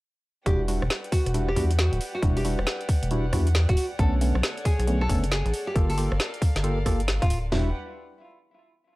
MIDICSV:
0, 0, Header, 1, 6, 480
1, 0, Start_track
1, 0, Tempo, 441176
1, 503, Time_signature, 4, 2, 24, 8
1, 9746, End_track
2, 0, Start_track
2, 0, Title_t, "Violin section"
2, 0, Program_c, 0, 48
2, 500, Note_on_c, 0, 71, 68
2, 501, Note_on_c, 0, 67, 73
2, 501, Note_on_c, 0, 74, 66
2, 501, Note_on_c, 0, 78, 78
2, 4303, Note_off_c, 0, 67, 0
2, 4303, Note_off_c, 0, 71, 0
2, 4342, Note_on_c, 0, 69, 78
2, 4344, Note_on_c, 0, 73, 70
2, 6219, Note_off_c, 0, 78, 0
2, 6244, Note_off_c, 0, 73, 0
2, 6263, Note_on_c, 0, 70, 73
2, 6263, Note_on_c, 0, 77, 89
2, 8139, Note_off_c, 0, 74, 0
2, 8144, Note_off_c, 0, 69, 0
2, 8163, Note_off_c, 0, 77, 0
2, 8164, Note_off_c, 0, 70, 0
2, 8182, Note_on_c, 0, 67, 68
2, 8182, Note_on_c, 0, 71, 64
2, 8182, Note_on_c, 0, 74, 62
2, 8182, Note_on_c, 0, 78, 76
2, 8405, Note_off_c, 0, 67, 0
2, 8405, Note_off_c, 0, 71, 0
2, 8406, Note_off_c, 0, 74, 0
2, 8406, Note_off_c, 0, 78, 0
2, 9746, End_track
3, 0, Start_track
3, 0, Title_t, "Nylon-string guitar"
3, 0, Program_c, 1, 24
3, 500, Note_on_c, 1, 67, 92
3, 656, Note_off_c, 1, 67, 0
3, 1222, Note_on_c, 1, 66, 87
3, 1422, Note_off_c, 1, 66, 0
3, 1616, Note_on_c, 1, 67, 87
3, 1785, Note_off_c, 1, 67, 0
3, 1943, Note_on_c, 1, 66, 88
3, 2142, Note_off_c, 1, 66, 0
3, 2336, Note_on_c, 1, 66, 83
3, 2427, Note_off_c, 1, 66, 0
3, 2577, Note_on_c, 1, 67, 83
3, 2667, Note_off_c, 1, 67, 0
3, 4015, Note_on_c, 1, 66, 91
3, 4184, Note_off_c, 1, 66, 0
3, 4340, Note_on_c, 1, 69, 97
3, 4496, Note_off_c, 1, 69, 0
3, 5062, Note_on_c, 1, 68, 93
3, 5262, Note_off_c, 1, 68, 0
3, 5453, Note_on_c, 1, 69, 91
3, 5623, Note_off_c, 1, 69, 0
3, 5781, Note_on_c, 1, 68, 91
3, 5981, Note_off_c, 1, 68, 0
3, 6171, Note_on_c, 1, 67, 87
3, 6264, Note_off_c, 1, 67, 0
3, 6414, Note_on_c, 1, 69, 86
3, 6505, Note_off_c, 1, 69, 0
3, 7854, Note_on_c, 1, 65, 93
3, 8024, Note_off_c, 1, 65, 0
3, 8179, Note_on_c, 1, 64, 89
3, 8372, Note_off_c, 1, 64, 0
3, 9746, End_track
4, 0, Start_track
4, 0, Title_t, "Synth stab"
4, 0, Program_c, 2, 62
4, 501, Note_on_c, 2, 55, 79
4, 501, Note_on_c, 2, 64, 74
4, 502, Note_on_c, 2, 62, 74
4, 502, Note_on_c, 2, 66, 88
4, 721, Note_off_c, 2, 55, 0
4, 721, Note_off_c, 2, 62, 0
4, 721, Note_off_c, 2, 64, 0
4, 721, Note_off_c, 2, 66, 0
4, 740, Note_on_c, 2, 55, 75
4, 740, Note_on_c, 2, 62, 70
4, 740, Note_on_c, 2, 64, 69
4, 740, Note_on_c, 2, 66, 84
4, 908, Note_off_c, 2, 55, 0
4, 908, Note_off_c, 2, 62, 0
4, 908, Note_off_c, 2, 64, 0
4, 908, Note_off_c, 2, 66, 0
4, 1461, Note_on_c, 2, 55, 73
4, 1461, Note_on_c, 2, 62, 65
4, 1461, Note_on_c, 2, 64, 65
4, 1461, Note_on_c, 2, 66, 79
4, 1629, Note_off_c, 2, 55, 0
4, 1629, Note_off_c, 2, 62, 0
4, 1629, Note_off_c, 2, 64, 0
4, 1629, Note_off_c, 2, 66, 0
4, 1701, Note_on_c, 2, 55, 85
4, 1701, Note_on_c, 2, 62, 80
4, 1702, Note_on_c, 2, 64, 81
4, 1702, Note_on_c, 2, 66, 97
4, 1869, Note_off_c, 2, 55, 0
4, 1869, Note_off_c, 2, 62, 0
4, 1869, Note_off_c, 2, 64, 0
4, 1869, Note_off_c, 2, 66, 0
4, 2422, Note_on_c, 2, 55, 81
4, 2422, Note_on_c, 2, 62, 74
4, 2422, Note_on_c, 2, 64, 74
4, 2422, Note_on_c, 2, 66, 87
4, 2642, Note_off_c, 2, 55, 0
4, 2642, Note_off_c, 2, 62, 0
4, 2642, Note_off_c, 2, 64, 0
4, 2642, Note_off_c, 2, 66, 0
4, 2662, Note_on_c, 2, 55, 76
4, 2662, Note_on_c, 2, 62, 73
4, 2662, Note_on_c, 2, 64, 69
4, 2662, Note_on_c, 2, 66, 86
4, 2829, Note_off_c, 2, 55, 0
4, 2829, Note_off_c, 2, 62, 0
4, 2829, Note_off_c, 2, 64, 0
4, 2829, Note_off_c, 2, 66, 0
4, 3382, Note_on_c, 2, 66, 80
4, 3383, Note_on_c, 2, 55, 71
4, 3383, Note_on_c, 2, 62, 67
4, 3383, Note_on_c, 2, 64, 67
4, 3549, Note_off_c, 2, 62, 0
4, 3549, Note_off_c, 2, 66, 0
4, 3550, Note_off_c, 2, 55, 0
4, 3550, Note_off_c, 2, 64, 0
4, 3623, Note_on_c, 2, 55, 88
4, 3623, Note_on_c, 2, 62, 81
4, 3623, Note_on_c, 2, 64, 80
4, 3623, Note_on_c, 2, 66, 97
4, 3790, Note_off_c, 2, 55, 0
4, 3790, Note_off_c, 2, 62, 0
4, 3790, Note_off_c, 2, 64, 0
4, 3790, Note_off_c, 2, 66, 0
4, 4343, Note_on_c, 2, 50, 82
4, 4343, Note_on_c, 2, 57, 74
4, 4343, Note_on_c, 2, 59, 77
4, 4343, Note_on_c, 2, 61, 93
4, 4562, Note_off_c, 2, 50, 0
4, 4562, Note_off_c, 2, 57, 0
4, 4562, Note_off_c, 2, 59, 0
4, 4562, Note_off_c, 2, 61, 0
4, 4582, Note_on_c, 2, 50, 79
4, 4582, Note_on_c, 2, 57, 70
4, 4582, Note_on_c, 2, 61, 84
4, 4583, Note_on_c, 2, 59, 73
4, 4749, Note_off_c, 2, 50, 0
4, 4749, Note_off_c, 2, 57, 0
4, 4749, Note_off_c, 2, 61, 0
4, 4750, Note_off_c, 2, 59, 0
4, 5302, Note_on_c, 2, 50, 74
4, 5302, Note_on_c, 2, 57, 68
4, 5302, Note_on_c, 2, 61, 81
4, 5303, Note_on_c, 2, 59, 68
4, 5469, Note_off_c, 2, 50, 0
4, 5469, Note_off_c, 2, 57, 0
4, 5469, Note_off_c, 2, 61, 0
4, 5470, Note_off_c, 2, 59, 0
4, 5541, Note_on_c, 2, 57, 83
4, 5541, Note_on_c, 2, 59, 82
4, 5541, Note_on_c, 2, 61, 99
4, 5542, Note_on_c, 2, 50, 88
4, 5709, Note_off_c, 2, 50, 0
4, 5709, Note_off_c, 2, 57, 0
4, 5709, Note_off_c, 2, 59, 0
4, 5709, Note_off_c, 2, 61, 0
4, 6261, Note_on_c, 2, 58, 83
4, 6261, Note_on_c, 2, 65, 78
4, 6261, Note_on_c, 2, 67, 74
4, 6261, Note_on_c, 2, 69, 91
4, 6481, Note_off_c, 2, 58, 0
4, 6481, Note_off_c, 2, 65, 0
4, 6481, Note_off_c, 2, 67, 0
4, 6481, Note_off_c, 2, 69, 0
4, 6500, Note_on_c, 2, 65, 73
4, 6500, Note_on_c, 2, 69, 89
4, 6501, Note_on_c, 2, 58, 79
4, 6501, Note_on_c, 2, 67, 71
4, 6668, Note_off_c, 2, 65, 0
4, 6668, Note_off_c, 2, 69, 0
4, 6669, Note_off_c, 2, 58, 0
4, 6669, Note_off_c, 2, 67, 0
4, 7220, Note_on_c, 2, 67, 66
4, 7221, Note_on_c, 2, 58, 75
4, 7221, Note_on_c, 2, 65, 66
4, 7221, Note_on_c, 2, 69, 83
4, 7388, Note_off_c, 2, 67, 0
4, 7389, Note_off_c, 2, 58, 0
4, 7389, Note_off_c, 2, 65, 0
4, 7389, Note_off_c, 2, 69, 0
4, 7461, Note_on_c, 2, 58, 89
4, 7461, Note_on_c, 2, 65, 82
4, 7461, Note_on_c, 2, 67, 82
4, 7462, Note_on_c, 2, 69, 99
4, 7629, Note_off_c, 2, 58, 0
4, 7629, Note_off_c, 2, 65, 0
4, 7629, Note_off_c, 2, 67, 0
4, 7629, Note_off_c, 2, 69, 0
4, 8181, Note_on_c, 2, 66, 92
4, 8182, Note_on_c, 2, 55, 83
4, 8182, Note_on_c, 2, 62, 78
4, 8182, Note_on_c, 2, 64, 76
4, 8373, Note_off_c, 2, 55, 0
4, 8373, Note_off_c, 2, 62, 0
4, 8373, Note_off_c, 2, 64, 0
4, 8373, Note_off_c, 2, 66, 0
4, 9746, End_track
5, 0, Start_track
5, 0, Title_t, "Analog synth bass"
5, 0, Program_c, 3, 38
5, 500, Note_on_c, 3, 28, 94
5, 868, Note_off_c, 3, 28, 0
5, 893, Note_on_c, 3, 28, 82
5, 972, Note_off_c, 3, 28, 0
5, 1374, Note_on_c, 3, 28, 88
5, 1687, Note_off_c, 3, 28, 0
5, 1701, Note_on_c, 3, 40, 96
5, 2068, Note_off_c, 3, 40, 0
5, 2092, Note_on_c, 3, 26, 99
5, 2172, Note_off_c, 3, 26, 0
5, 2421, Note_on_c, 3, 28, 96
5, 2788, Note_off_c, 3, 28, 0
5, 2814, Note_on_c, 3, 28, 84
5, 2893, Note_off_c, 3, 28, 0
5, 3294, Note_on_c, 3, 28, 89
5, 3607, Note_off_c, 3, 28, 0
5, 3621, Note_on_c, 3, 40, 101
5, 3988, Note_off_c, 3, 40, 0
5, 4015, Note_on_c, 3, 26, 97
5, 4093, Note_off_c, 3, 26, 0
5, 4341, Note_on_c, 3, 35, 95
5, 4708, Note_off_c, 3, 35, 0
5, 4734, Note_on_c, 3, 35, 85
5, 4813, Note_off_c, 3, 35, 0
5, 5215, Note_on_c, 3, 35, 89
5, 5527, Note_off_c, 3, 35, 0
5, 5541, Note_on_c, 3, 30, 99
5, 5908, Note_off_c, 3, 30, 0
5, 5935, Note_on_c, 3, 33, 96
5, 6013, Note_off_c, 3, 33, 0
5, 6261, Note_on_c, 3, 31, 96
5, 6628, Note_off_c, 3, 31, 0
5, 6656, Note_on_c, 3, 31, 86
5, 6733, Note_off_c, 3, 31, 0
5, 7135, Note_on_c, 3, 31, 93
5, 7447, Note_off_c, 3, 31, 0
5, 7461, Note_on_c, 3, 31, 82
5, 7828, Note_off_c, 3, 31, 0
5, 7854, Note_on_c, 3, 26, 88
5, 8167, Note_off_c, 3, 26, 0
5, 8184, Note_on_c, 3, 28, 96
5, 8407, Note_off_c, 3, 28, 0
5, 9746, End_track
6, 0, Start_track
6, 0, Title_t, "Drums"
6, 500, Note_on_c, 9, 36, 109
6, 503, Note_on_c, 9, 42, 61
6, 609, Note_off_c, 9, 36, 0
6, 612, Note_off_c, 9, 42, 0
6, 742, Note_on_c, 9, 46, 106
6, 851, Note_off_c, 9, 46, 0
6, 895, Note_on_c, 9, 37, 64
6, 982, Note_on_c, 9, 38, 111
6, 1004, Note_off_c, 9, 37, 0
6, 1091, Note_off_c, 9, 38, 0
6, 1135, Note_on_c, 9, 42, 34
6, 1220, Note_on_c, 9, 36, 101
6, 1222, Note_on_c, 9, 46, 101
6, 1244, Note_off_c, 9, 42, 0
6, 1329, Note_off_c, 9, 36, 0
6, 1331, Note_off_c, 9, 46, 0
6, 1376, Note_on_c, 9, 37, 31
6, 1376, Note_on_c, 9, 42, 62
6, 1462, Note_off_c, 9, 42, 0
6, 1462, Note_on_c, 9, 42, 64
6, 1484, Note_off_c, 9, 37, 0
6, 1571, Note_off_c, 9, 42, 0
6, 1615, Note_on_c, 9, 37, 53
6, 1701, Note_on_c, 9, 36, 57
6, 1703, Note_on_c, 9, 46, 101
6, 1724, Note_off_c, 9, 37, 0
6, 1809, Note_off_c, 9, 36, 0
6, 1812, Note_off_c, 9, 46, 0
6, 1856, Note_on_c, 9, 42, 62
6, 1944, Note_on_c, 9, 38, 111
6, 1965, Note_off_c, 9, 42, 0
6, 2052, Note_off_c, 9, 38, 0
6, 2097, Note_on_c, 9, 42, 49
6, 2184, Note_on_c, 9, 46, 102
6, 2206, Note_off_c, 9, 42, 0
6, 2293, Note_off_c, 9, 46, 0
6, 2421, Note_on_c, 9, 36, 114
6, 2423, Note_on_c, 9, 42, 58
6, 2530, Note_off_c, 9, 36, 0
6, 2532, Note_off_c, 9, 42, 0
6, 2576, Note_on_c, 9, 46, 59
6, 2663, Note_off_c, 9, 46, 0
6, 2663, Note_on_c, 9, 46, 101
6, 2772, Note_off_c, 9, 46, 0
6, 2816, Note_on_c, 9, 37, 66
6, 2902, Note_on_c, 9, 38, 114
6, 2925, Note_off_c, 9, 37, 0
6, 3011, Note_off_c, 9, 38, 0
6, 3054, Note_on_c, 9, 42, 34
6, 3141, Note_on_c, 9, 36, 106
6, 3142, Note_on_c, 9, 46, 100
6, 3163, Note_off_c, 9, 42, 0
6, 3250, Note_off_c, 9, 36, 0
6, 3251, Note_off_c, 9, 46, 0
6, 3294, Note_on_c, 9, 42, 62
6, 3382, Note_off_c, 9, 42, 0
6, 3382, Note_on_c, 9, 42, 60
6, 3490, Note_off_c, 9, 42, 0
6, 3622, Note_on_c, 9, 36, 60
6, 3622, Note_on_c, 9, 37, 65
6, 3622, Note_on_c, 9, 46, 102
6, 3730, Note_off_c, 9, 36, 0
6, 3730, Note_off_c, 9, 37, 0
6, 3730, Note_off_c, 9, 46, 0
6, 3774, Note_on_c, 9, 42, 61
6, 3861, Note_on_c, 9, 38, 118
6, 3883, Note_off_c, 9, 42, 0
6, 3969, Note_off_c, 9, 38, 0
6, 4014, Note_on_c, 9, 42, 48
6, 4015, Note_on_c, 9, 36, 105
6, 4101, Note_on_c, 9, 46, 102
6, 4123, Note_off_c, 9, 36, 0
6, 4123, Note_off_c, 9, 42, 0
6, 4209, Note_off_c, 9, 46, 0
6, 4342, Note_on_c, 9, 36, 117
6, 4342, Note_on_c, 9, 42, 58
6, 4451, Note_off_c, 9, 36, 0
6, 4451, Note_off_c, 9, 42, 0
6, 4583, Note_on_c, 9, 46, 100
6, 4691, Note_off_c, 9, 46, 0
6, 4736, Note_on_c, 9, 37, 65
6, 4824, Note_on_c, 9, 38, 122
6, 4845, Note_off_c, 9, 37, 0
6, 4933, Note_off_c, 9, 38, 0
6, 4977, Note_on_c, 9, 42, 34
6, 5062, Note_on_c, 9, 36, 113
6, 5064, Note_on_c, 9, 46, 98
6, 5086, Note_off_c, 9, 42, 0
6, 5170, Note_off_c, 9, 36, 0
6, 5173, Note_off_c, 9, 46, 0
6, 5217, Note_on_c, 9, 37, 32
6, 5217, Note_on_c, 9, 42, 62
6, 5304, Note_off_c, 9, 42, 0
6, 5304, Note_on_c, 9, 42, 61
6, 5326, Note_off_c, 9, 37, 0
6, 5412, Note_off_c, 9, 42, 0
6, 5456, Note_on_c, 9, 37, 56
6, 5542, Note_on_c, 9, 36, 63
6, 5543, Note_on_c, 9, 46, 99
6, 5565, Note_off_c, 9, 37, 0
6, 5651, Note_off_c, 9, 36, 0
6, 5652, Note_off_c, 9, 46, 0
6, 5697, Note_on_c, 9, 42, 62
6, 5784, Note_on_c, 9, 38, 122
6, 5806, Note_off_c, 9, 42, 0
6, 5892, Note_off_c, 9, 38, 0
6, 5937, Note_on_c, 9, 42, 47
6, 6023, Note_on_c, 9, 46, 100
6, 6046, Note_off_c, 9, 42, 0
6, 6132, Note_off_c, 9, 46, 0
6, 6262, Note_on_c, 9, 36, 123
6, 6264, Note_on_c, 9, 42, 60
6, 6371, Note_off_c, 9, 36, 0
6, 6373, Note_off_c, 9, 42, 0
6, 6416, Note_on_c, 9, 46, 58
6, 6502, Note_off_c, 9, 46, 0
6, 6502, Note_on_c, 9, 46, 99
6, 6611, Note_off_c, 9, 46, 0
6, 6656, Note_on_c, 9, 37, 64
6, 6743, Note_on_c, 9, 38, 119
6, 6765, Note_off_c, 9, 37, 0
6, 6852, Note_off_c, 9, 38, 0
6, 6896, Note_on_c, 9, 42, 34
6, 6981, Note_on_c, 9, 36, 113
6, 6984, Note_on_c, 9, 46, 97
6, 7005, Note_off_c, 9, 42, 0
6, 7090, Note_off_c, 9, 36, 0
6, 7092, Note_off_c, 9, 46, 0
6, 7137, Note_on_c, 9, 38, 63
6, 7137, Note_on_c, 9, 42, 64
6, 7223, Note_off_c, 9, 42, 0
6, 7223, Note_on_c, 9, 42, 64
6, 7245, Note_off_c, 9, 38, 0
6, 7332, Note_off_c, 9, 42, 0
6, 7462, Note_on_c, 9, 36, 62
6, 7463, Note_on_c, 9, 37, 64
6, 7463, Note_on_c, 9, 46, 100
6, 7570, Note_off_c, 9, 36, 0
6, 7572, Note_off_c, 9, 37, 0
6, 7572, Note_off_c, 9, 46, 0
6, 7616, Note_on_c, 9, 42, 63
6, 7702, Note_on_c, 9, 38, 122
6, 7725, Note_off_c, 9, 42, 0
6, 7811, Note_off_c, 9, 38, 0
6, 7855, Note_on_c, 9, 36, 108
6, 7856, Note_on_c, 9, 42, 49
6, 7943, Note_on_c, 9, 46, 99
6, 7963, Note_off_c, 9, 36, 0
6, 7965, Note_off_c, 9, 42, 0
6, 8052, Note_off_c, 9, 46, 0
6, 8182, Note_on_c, 9, 38, 101
6, 8182, Note_on_c, 9, 43, 104
6, 8182, Note_on_c, 9, 46, 86
6, 8291, Note_off_c, 9, 38, 0
6, 8291, Note_off_c, 9, 43, 0
6, 8291, Note_off_c, 9, 46, 0
6, 9746, End_track
0, 0, End_of_file